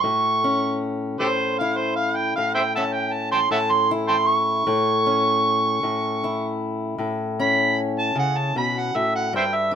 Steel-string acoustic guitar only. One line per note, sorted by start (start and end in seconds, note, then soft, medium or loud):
0.00 1.20 A2 medium
0.00 0.44 A3 medium
0.44 2.75 C#4 medium
1.20 2.37 A2 medium
1.61 3.90 E4 medium
2.38 3.50 A2 medium
2.77 4.65 C#4 medium
3.51 4.66 A2 medium
3.91 4.64 E4 medium
4.67 5.82 A2 medium
5.06 7.38 C#4 medium
5.83 6.97 A2 medium
6.24 9.28 E4 medium
6.98 8.15 A2 medium
7.40 9.28 C#4 medium
8.15 8.54 C#3 medium
8.56 8.94 B2 medium
8.95 9.33 A2 medium
9.33 9.75 G2 medium
9.71 9.75 D4 medium